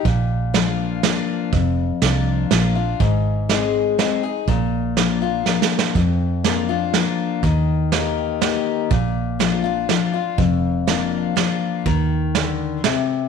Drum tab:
HH |x--x--x--|x--x--x--|x--x--x--|x--x-----|
SD |---o--o--|---o--o--|---o--o--|---o--ooo|
BD |o--------|o--------|o--------|o--------|

HH |x--x--x--|x--x--x--|x--x--x--|x--x--x--|
SD |---o--o--|---o--o--|---o--o--|---o--o--|
BD |o--------|o--------|o--------|o--------|

HH |x--x--x--|
SD |---o--o--|
BD |o--------|